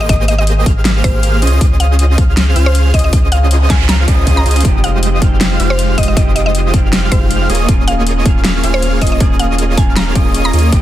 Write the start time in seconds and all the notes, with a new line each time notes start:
0.01 D#5
0.09 G#1 A#3 G4 G#4 C5 D#5 D#6, kick, closed hi-hat
0.28 D#5, closed hi-hat
0.38 D#5
0.47 closed hi-hat
0.66 G#1 A#3 G4 G#4 C5 F5 F6, kick, closed hi-hat
0.85 snare, closed hi-hat
1.04 G#1 A#3 G4 G#4 C5 F5 F6, kick, closed hi-hat
1.23 closed hi-hat
1.42 C#2 C#4 F4 G#4 C5 D#5 D#6, closed hi-hat
1.47 closed hi-hat
1.61 C#2 C#4 F4 G#4 C5 D#5 D#6, kick, closed hi-hat
1.80 F5, closed hi-hat
1.99 closed hi-hat
2.18 C#2 C#4 F4 G#4 C5 F5 F6, kick, closed hi-hat
2.37 snare, closed hi-hat
2.56 C#2 C#4 F4 G#4 C5 F5 F6, closed hi-hat
2.66 C5
2.75 closed hi-hat
2.94 C#2 C#4 F4 G#4 C5 D#5 D#6, kick, closed hi-hat
2.99 closed hi-hat
3.04 D#5
3.13 C#2 C#4 F4 G#4 C5 D#5 D#6, kick, closed hi-hat, noise sweep
3.32 F5, closed hi-hat
3.51 closed hi-hat
3.70 C#2 C#4 F4 G#4 C5 F5 G#5 F6, kick, snare, closed hi-hat
3.89 A#5, snare, closed hi-hat
4.08 C#2 C#4 F4 G#4 C5 D#5 D#6, kick, closed hi-hat
4.27 kick, closed hi-hat
4.37 A#5
4.46 C#2 C#4 F4 G#4 C5 D#5 D#6, closed hi-hat
4.51 closed hi-hat
4.56 closed hi-hat
4.60 G#3 C4, closed hi-hat
4.65 F1 G#3 D#4 F4 G4 C5 D#5 D#6, kick, closed hi-hat
4.84 F5, closed hi-hat
5.03 closed hi-hat
5.20 F1 G#3 C4 D#4 F4 G4 C5 F5, kick, closed hi-hat
5.24 G4
5.41 snare, closed hi-hat
5.60 F1 G#3 F4 G4 C5 F5 F6, closed hi-hat
5.70 C5
5.79 closed hi-hat
5.98 F1 G#3 F4 G4 C5 D#5 D#6, kick, closed hi-hat
6.03 closed hi-hat
6.08 D#5
6.15 F1 G#3 C4 D#4 F4 G4 C5 D#5 D#6, kick, closed hi-hat
6.36 D#5, closed hi-hat
6.46 D#5
6.55 closed hi-hat
6.72 F1 G#3 C4 D#4 F4 G4 C5 F5 F6, kick, closed hi-hat
6.93 snare, closed hi-hat
7.12 F1 G#3 F4 G4 C5 F5 F6, kick, closed hi-hat
7.31 closed hi-hat
7.50 D#1 A#3 F4 G#4 C#5 D#5 D#6, closed hi-hat
7.55 closed hi-hat
7.67 D#1 A#3 C#4 F4 G#4 C#5 D#5 D#6, kick, closed hi-hat
7.71 G#4
7.88 F5, closed hi-hat
8.07 closed hi-hat
8.24 D#1 A#3 C#4 F4 G#4 C#5 F5 F6, kick, closed hi-hat
8.28 G#4
8.45 snare, closed hi-hat
8.64 D#1 A#3 F4 G#4 C#5 F5 F6, closed hi-hat
8.74 C5
8.83 closed hi-hat
9.01 D#1 A#3 F4 G#4 C#5 D#5 D#6, kick, closed hi-hat
9.07 closed hi-hat
9.12 D#5
9.19 D#1 A#3 C#4 F4 G#4 C#5 D#5 D#6, kick, closed hi-hat
9.23 G#4
9.39 F5, closed hi-hat
9.59 closed hi-hat
9.76 D#1 A#3 C#4 F4 G#4 C#5 F5 G#5 F6, kick, closed hi-hat
9.80 G#4
9.96 A#5, snare, closed hi-hat
10.15 D#1 A#3 F4 G#4 C#5 D#5 D#6, kick, closed hi-hat
10.34 closed hi-hat
10.45 A#5
10.53 D#2 A#3 F4 G#4 C#5 D#5 D#6, closed hi-hat
10.59 closed hi-hat
10.70 G#1 A#3 C4 D#4 G4 G#4 C5 D#5 D#6, kick, closed hi-hat
10.74 G5